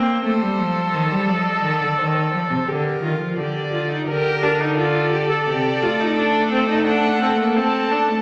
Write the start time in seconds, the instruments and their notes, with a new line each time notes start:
Already playing: cello A#3, viola C4, violin G5
0.25 cello A3, viola A4, violin C5
0.42 cello G3
0.59 cello F3
0.94 cello D#3
1.11 cello G3
1.29 cello F3, violin D5
1.36 violin D#5
1.45 violin D5
1.53 violin D#5
1.61 cello D#3, violin D5
1.69 violin D#5
1.77 cello D3, violin D5
1.98 cello D#3, violin C5
2.06 violin D5
2.14 violin C5
2.22 violin D5
2.31 cello F3, violin C5
2.39 violin D5
2.46 cello C3, violin C5
2.67 cello D3, viola G4, violin A#4
2.75 violin A4
2.82 violin A#4
3.02 cello D#3, viola F4
3.20 cello F3
3.37 cello D3, viola G4, violin D5
3.73 viola F4
3.90 viola D#4
4.08 cello D3, viola G4, violin A#4
4.43 viola D4
4.60 viola D#4
4.77 viola F4, violin A4 D5
5.12 viola G4
5.30 viola A4
5.47 cello C3, viola G4
5.82 cello A3, viola F4
6.00 viola D#4
6.17 viola D4
6.52 viola C4
6.69 viola D#4
6.87 viola D4, violin F#5
7.22 viola C4
7.39 viola A#3
7.56 viola C4, violin A5
7.91 viola D4
8.08 viola A3